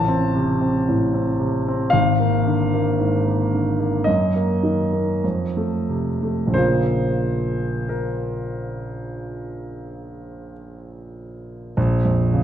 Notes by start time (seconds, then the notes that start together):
Already playing: A1 A5
0.08 C4
0.34 C3
0.61 C4
0.89 A2
1.14 C4
1.39 C3
1.68 C4
1.90 G#1 F5
2.20 A#3
2.47 D3
2.74 A#3
3.00 G#2
3.27 A#3
3.53 D3
3.79 A#3
4.04 F#2 D#5
4.36 A#3
4.63 D#3
4.92 A#3
5.24 F2
5.57 A3
5.89 C3
6.23 A3
6.47 A#1
6.52 C#3 A#3 F4 C5
7.89 A#4
11.77 A#1
12.05 F2
12.34 C#3